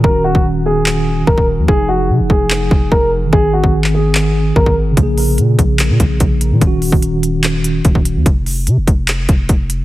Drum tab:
HH |----------------|----------------|----------------|x-o-x-x-x-x-x-x-|
CP |--------x-------|--------x-------|-----x--x-------|--------x-------|
BD |o--o--------oo--|o-----o---o-o---|o--o--------oo--|o-----o---o-o---|

HH |x-o-x-x-x-x-x-x-|x-o-x-x-x-x-x-x-|
CP |--------x-------|--------x-------|
BD |o--o--------oo--|o-----o---o-o---|